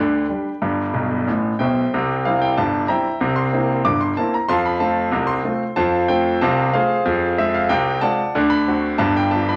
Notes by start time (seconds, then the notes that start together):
Already playing: D2 D3 D5 G5 B5
0.29 G3 D4 G4
0.62 G1 G2
0.94 B1 B2
1.27 A1 A2
1.59 B1 B2 C5 E5 G5
1.94 C2 C3
2.25 G3 C4 E4 F5
2.42 G5
2.58 G1 G2 A5
2.88 G3 C4 E4 E5 G5 A#5
3.21 C2 C3
3.36 C6
3.53 A#3 C4 E4
3.85 G1 G2 D6
4.01 C6
4.17 A#3 C4 E4 A5
4.34 A#5
4.48 F2 F3 F5 A5 C6
4.66 B5
4.80 A3 C4 F4 A5
5.11 C2 C3
5.27 C6
5.45 A3 C4 F4
5.76 F2 F3 C5 F5 A5
6.08 A3 C4 F4 G5
6.41 C2 C3 C5 F5 A5
6.73 A3 C4 F4 G#4 C5 F5
7.05 F2 F3
7.38 G#3 C4 F4 E5
7.54 F5
7.69 C2 C3 G5
8.01 G#3 C4 F4 D5 F#5 A5
8.35 D2 D3
8.50 B5
8.68 A3 C4 F#4
8.98 G1 G2 A5
9.17 G5
9.31 F3 B3 G4 A5
9.49 B5